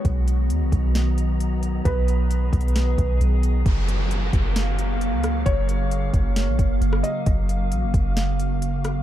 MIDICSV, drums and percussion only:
0, 0, Header, 1, 2, 480
1, 0, Start_track
1, 0, Key_signature, 6, "major"
1, 0, Tempo, 451128
1, 52, Time_signature, 4, 2, 24, 8
1, 9607, End_track
2, 0, Start_track
2, 0, Title_t, "Drums"
2, 52, Note_on_c, 9, 36, 113
2, 52, Note_on_c, 9, 42, 77
2, 158, Note_off_c, 9, 42, 0
2, 159, Note_off_c, 9, 36, 0
2, 294, Note_on_c, 9, 42, 71
2, 400, Note_off_c, 9, 42, 0
2, 532, Note_on_c, 9, 42, 80
2, 639, Note_off_c, 9, 42, 0
2, 769, Note_on_c, 9, 36, 94
2, 771, Note_on_c, 9, 42, 72
2, 875, Note_off_c, 9, 36, 0
2, 877, Note_off_c, 9, 42, 0
2, 1012, Note_on_c, 9, 38, 119
2, 1014, Note_on_c, 9, 42, 78
2, 1119, Note_off_c, 9, 38, 0
2, 1120, Note_off_c, 9, 42, 0
2, 1253, Note_on_c, 9, 42, 69
2, 1360, Note_off_c, 9, 42, 0
2, 1494, Note_on_c, 9, 42, 73
2, 1601, Note_off_c, 9, 42, 0
2, 1731, Note_on_c, 9, 42, 69
2, 1838, Note_off_c, 9, 42, 0
2, 1972, Note_on_c, 9, 36, 115
2, 1972, Note_on_c, 9, 42, 75
2, 2079, Note_off_c, 9, 36, 0
2, 2079, Note_off_c, 9, 42, 0
2, 2214, Note_on_c, 9, 42, 69
2, 2321, Note_off_c, 9, 42, 0
2, 2453, Note_on_c, 9, 42, 77
2, 2560, Note_off_c, 9, 42, 0
2, 2689, Note_on_c, 9, 36, 94
2, 2692, Note_on_c, 9, 46, 54
2, 2693, Note_on_c, 9, 42, 62
2, 2773, Note_off_c, 9, 42, 0
2, 2773, Note_on_c, 9, 42, 61
2, 2796, Note_off_c, 9, 36, 0
2, 2798, Note_off_c, 9, 46, 0
2, 2854, Note_off_c, 9, 42, 0
2, 2854, Note_on_c, 9, 42, 62
2, 2933, Note_on_c, 9, 38, 115
2, 2935, Note_off_c, 9, 42, 0
2, 2935, Note_on_c, 9, 42, 75
2, 3040, Note_off_c, 9, 38, 0
2, 3041, Note_off_c, 9, 42, 0
2, 3172, Note_on_c, 9, 36, 91
2, 3175, Note_on_c, 9, 42, 67
2, 3279, Note_off_c, 9, 36, 0
2, 3282, Note_off_c, 9, 42, 0
2, 3415, Note_on_c, 9, 42, 69
2, 3521, Note_off_c, 9, 42, 0
2, 3652, Note_on_c, 9, 42, 70
2, 3758, Note_off_c, 9, 42, 0
2, 3893, Note_on_c, 9, 36, 117
2, 3893, Note_on_c, 9, 42, 79
2, 3999, Note_off_c, 9, 36, 0
2, 3999, Note_off_c, 9, 42, 0
2, 4133, Note_on_c, 9, 42, 75
2, 4240, Note_off_c, 9, 42, 0
2, 4373, Note_on_c, 9, 42, 80
2, 4479, Note_off_c, 9, 42, 0
2, 4609, Note_on_c, 9, 36, 97
2, 4610, Note_on_c, 9, 42, 72
2, 4715, Note_off_c, 9, 36, 0
2, 4716, Note_off_c, 9, 42, 0
2, 4852, Note_on_c, 9, 38, 120
2, 4853, Note_on_c, 9, 42, 82
2, 4958, Note_off_c, 9, 38, 0
2, 4960, Note_off_c, 9, 42, 0
2, 5092, Note_on_c, 9, 42, 70
2, 5198, Note_off_c, 9, 42, 0
2, 5333, Note_on_c, 9, 42, 72
2, 5440, Note_off_c, 9, 42, 0
2, 5570, Note_on_c, 9, 42, 68
2, 5574, Note_on_c, 9, 37, 97
2, 5677, Note_off_c, 9, 42, 0
2, 5681, Note_off_c, 9, 37, 0
2, 5811, Note_on_c, 9, 36, 118
2, 5811, Note_on_c, 9, 42, 80
2, 5917, Note_off_c, 9, 42, 0
2, 5918, Note_off_c, 9, 36, 0
2, 6052, Note_on_c, 9, 42, 73
2, 6159, Note_off_c, 9, 42, 0
2, 6292, Note_on_c, 9, 42, 82
2, 6399, Note_off_c, 9, 42, 0
2, 6528, Note_on_c, 9, 36, 95
2, 6530, Note_on_c, 9, 42, 72
2, 6634, Note_off_c, 9, 36, 0
2, 6636, Note_off_c, 9, 42, 0
2, 6770, Note_on_c, 9, 38, 123
2, 6772, Note_on_c, 9, 42, 80
2, 6877, Note_off_c, 9, 38, 0
2, 6878, Note_off_c, 9, 42, 0
2, 7010, Note_on_c, 9, 36, 93
2, 7012, Note_on_c, 9, 42, 71
2, 7117, Note_off_c, 9, 36, 0
2, 7118, Note_off_c, 9, 42, 0
2, 7252, Note_on_c, 9, 42, 70
2, 7358, Note_off_c, 9, 42, 0
2, 7370, Note_on_c, 9, 37, 104
2, 7477, Note_off_c, 9, 37, 0
2, 7489, Note_on_c, 9, 42, 72
2, 7595, Note_off_c, 9, 42, 0
2, 7729, Note_on_c, 9, 42, 82
2, 7730, Note_on_c, 9, 36, 115
2, 7835, Note_off_c, 9, 42, 0
2, 7837, Note_off_c, 9, 36, 0
2, 7971, Note_on_c, 9, 42, 74
2, 8077, Note_off_c, 9, 42, 0
2, 8211, Note_on_c, 9, 42, 82
2, 8317, Note_off_c, 9, 42, 0
2, 8447, Note_on_c, 9, 36, 98
2, 8448, Note_on_c, 9, 42, 75
2, 8554, Note_off_c, 9, 36, 0
2, 8555, Note_off_c, 9, 42, 0
2, 8690, Note_on_c, 9, 38, 127
2, 8691, Note_on_c, 9, 42, 79
2, 8796, Note_off_c, 9, 38, 0
2, 8798, Note_off_c, 9, 42, 0
2, 8932, Note_on_c, 9, 42, 68
2, 9038, Note_off_c, 9, 42, 0
2, 9173, Note_on_c, 9, 42, 74
2, 9279, Note_off_c, 9, 42, 0
2, 9410, Note_on_c, 9, 42, 68
2, 9414, Note_on_c, 9, 37, 96
2, 9517, Note_off_c, 9, 42, 0
2, 9521, Note_off_c, 9, 37, 0
2, 9607, End_track
0, 0, End_of_file